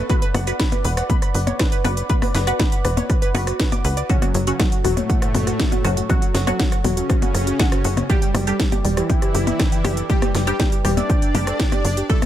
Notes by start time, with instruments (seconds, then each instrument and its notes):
0.10 synth stab B3 F#4 B4, synth arpeggio sound B4, analog synth pad B4 D5 F#5 D6, kick, closed hi-hat
0.22 synth arpeggio sound B4, closed hi-hat
0.34 analog synth bass F#1, synth arpeggio sound F#5, cross-stick, open hi-hat, percussion blips
0.47 synth stab B3 F#4 B4, synth arpeggio sound B4, closed hi-hat
0.60 synth arpeggio sound B5, kick, cross-stick, snare, closed hi-hat
0.72 synth arpeggio sound B4, closed hi-hat, percussion blips
0.84 analog synth bass E1, synth arpeggio sound B4, open hi-hat
0.97 synth arpeggio sound F#5, cross-stick, closed hi-hat
1.10 synth arpeggio sound B5, kick, closed hi-hat, percussion blips
1.22 synth arpeggio sound B5, cross-stick, closed hi-hat
1.34 analog synth bass F#1, synth arpeggio sound B4, open hi-hat
1.47 synth arpeggio sound C#5, closed hi-hat, percussion blips
1.59 synth arpeggio sound B4, kick, cross-stick, snare, closed hi-hat
1.72 synth arpeggio sound B4, closed hi-hat
1.84 analog synth bass F#1, synth stab B3 F#4 B4, synth arpeggio sound F#5, cross-stick, open hi-hat, percussion blips
1.97 synth arpeggio sound B4, closed hi-hat
2.10 synth stab B3 F#4 B4, synth arpeggio sound B5, kick, closed hi-hat
2.22 synth arpeggio sound B4, cross-stick, open hi-hat, percussion blips
2.35 analog synth bass F#1, synth arpeggio sound B4, snare, open hi-hat
2.47 synth stab B3 F#4 B4, synth arpeggio sound F#5, cross-stick, closed hi-hat
2.60 synth arpeggio sound B5, kick, snare, closed hi-hat, percussion blips
2.72 synth arpeggio sound B5, closed hi-hat
2.85 analog synth bass E1, synth arpeggio sound B4, cross-stick, open hi-hat
2.97 synth arpeggio sound C#5, closed hi-hat, percussion blips
3.10 synth arpeggio sound B4, kick, cross-stick, closed hi-hat
3.22 synth arpeggio sound B4, closed hi-hat
3.34 analog synth bass F#1, synth stab B3 F#4 B4, synth arpeggio sound F#4, open hi-hat, percussion blips
3.47 synth arpeggio sound F#4, cross-stick, closed hi-hat
3.60 synth arpeggio sound B4, kick, snare, closed hi-hat
3.72 synth arpeggio sound D6, cross-stick, closed hi-hat, percussion blips
3.85 analog synth bass C#2, synth arpeggio sound B4, open hi-hat
3.97 synth arpeggio sound D5, closed hi-hat
4.09 supersaw synth C#3 C#4, synth stab F#3 C#4 F#4, synth arpeggio sound F#4, analog synth pad A4 C#5 C#6, kick, closed hi-hat
4.22 supersaw synth F#3, synth arpeggio sound F#4, cross-stick, closed hi-hat, percussion blips
4.34 analog synth bass F#1, supersaw synth F#3, synth arpeggio sound C#5, open hi-hat
4.47 supersaw synth C#3 C#4, synth stab F#3 C#4 F#4, synth arpeggio sound F#4, closed hi-hat
4.59 supersaw synth F#3, synth arpeggio sound F#5, kick, cross-stick, snare, closed hi-hat, percussion blips
4.72 synth arpeggio sound F#4, closed hi-hat
4.84 analog synth bass E1, supersaw synth F#3, synth arpeggio sound F#4, cross-stick, open hi-hat
4.97 supersaw synth A2 A3, synth arpeggio sound C#5, closed hi-hat, percussion blips
5.09 synth arpeggio sound F#5, kick, closed hi-hat
5.22 synth arpeggio sound F#5, cross-stick, closed hi-hat
5.34 analog synth bass F#1, synth arpeggio sound F#4, open hi-hat, percussion blips
5.47 synth arpeggio sound F#4, cross-stick, closed hi-hat
5.59 synth arpeggio sound F#4, kick, snare, closed hi-hat
5.72 synth arpeggio sound F#4, closed hi-hat, percussion blips
5.84 analog synth bass F#1, synth stab F#3 C#4 F#4, synth arpeggio sound C#5, cross-stick, open hi-hat
5.97 synth arpeggio sound F#4, closed hi-hat
6.09 supersaw synth F#3 F#4, synth stab F#3 C#4 F#4, synth arpeggio sound F#5, kick, cross-stick, closed hi-hat, percussion blips
6.22 supersaw synth F#3, synth arpeggio sound F#4, closed hi-hat
6.34 analog synth bass F#1, supersaw synth F#3, synth arpeggio sound F#4, snare, open hi-hat
6.47 synth stab F#3 C#4 F#4, supersaw synth F#3 F#4, synth arpeggio sound C#5, cross-stick, closed hi-hat, percussion blips
6.59 supersaw synth F#3, synth arpeggio sound F#5, kick, snare, closed hi-hat
6.72 synth arpeggio sound F#5, cross-stick, closed hi-hat
6.84 analog synth bass E1, supersaw synth F#3, synth arpeggio sound F#4, open hi-hat, percussion blips
6.97 supersaw synth C#3 C#4, synth arpeggio sound F#4, closed hi-hat
7.09 synth arpeggio sound F#4, kick, cross-stick, closed hi-hat
7.22 synth arpeggio sound F#4, closed hi-hat, percussion blips
7.34 analog synth bass F#1, synth arpeggio sound C#5, cross-stick, open hi-hat
7.47 synth arpeggio sound F#4, closed hi-hat
7.59 synth stab F#3 C#4 F#4, synth arpeggio sound F#5, kick, snare, closed hi-hat, percussion blips
7.72 synth arpeggio sound F#4, cross-stick, closed hi-hat
7.84 analog synth bass F#1, synth arpeggio sound F#4, open hi-hat
7.97 synth arpeggio sound C#5, cross-stick, closed hi-hat, percussion blips
8.09 supersaw synth G3 G4, synth stab G3 D4 G4, analog synth pad B4 D5 G5 D6, synth arpeggio sound G5, kick, closed hi-hat
8.22 supersaw synth G3, synth arpeggio sound G5, closed hi-hat
8.34 analog synth bass F#1, supersaw synth G3, synth arpeggio sound G4, cross-stick, open hi-hat, percussion blips
8.47 synth stab G3 D4 G4, supersaw synth G3 G4, synth arpeggio sound A4, closed hi-hat
8.59 supersaw synth G3, synth arpeggio sound G4, kick, cross-stick, snare, closed hi-hat
8.72 synth arpeggio sound G4, closed hi-hat, percussion blips
8.84 analog synth bass E1, supersaw synth G3, synth arpeggio sound D5, open hi-hat
8.97 supersaw synth E3 E4, synth arpeggio sound G4, cross-stick, closed hi-hat
9.10 synth arpeggio sound G5, kick, closed hi-hat, percussion blips
9.22 synth arpeggio sound G4, cross-stick, closed hi-hat
9.34 analog synth bass F#1, synth arpeggio sound G4, open hi-hat
9.47 synth arpeggio sound E5, closed hi-hat, percussion blips
9.60 synth arpeggio sound G5, kick, cross-stick, snare, closed hi-hat
9.72 synth arpeggio sound G5, closed hi-hat
9.85 analog synth bass F#1, synth stab G3 D4 G4, synth arpeggio sound G4, cross-stick, open hi-hat, percussion blips
9.97 synth arpeggio sound A4, closed hi-hat
10.10 synth stab G3 D4 G4, supersaw synth G3 G4, synth arpeggio sound G4, kick, closed hi-hat
10.22 supersaw synth G3, synth arpeggio sound G4, cross-stick, closed hi-hat, percussion blips
10.35 analog synth bass F#1, supersaw synth G3, synth arpeggio sound D5, snare, open hi-hat
10.47 synth stab G3 D4 G4, supersaw synth G3 G4, synth arpeggio sound G4, cross-stick, closed hi-hat
10.60 supersaw synth G3, synth arpeggio sound G5, kick, snare, closed hi-hat, percussion blips
10.72 synth arpeggio sound G4, closed hi-hat
10.85 analog synth bass E1, supersaw synth G3, synth arpeggio sound G4, cross-stick, open hi-hat
10.97 supersaw synth D4 D5, synth arpeggio sound E5, closed hi-hat, percussion blips
11.10 synth arpeggio sound G5, kick, cross-stick, closed hi-hat
11.22 synth arpeggio sound G5, closed hi-hat
11.35 analog synth bass F#1, synth stab G3 D4 G4, synth arpeggio sound G4, open hi-hat, percussion blips
11.47 synth arpeggio sound A4, cross-stick, closed hi-hat
11.59 synth arpeggio sound G4, kick, snare, closed hi-hat
11.72 synth arpeggio sound G4, cross-stick, closed hi-hat, percussion blips
11.85 analog synth bass F#1, synth arpeggio sound D5, open hi-hat
11.97 synth arpeggio sound G4, closed hi-hat
12.10 synth stab A3 E4 A4, supersaw synth A3 A4, analog synth pad A4 C#5 E5 C#6, synth arpeggio sound A5, kick, closed hi-hat
12.22 supersaw synth A3, synth arpeggio sound A4, cross-stick, closed hi-hat, percussion blips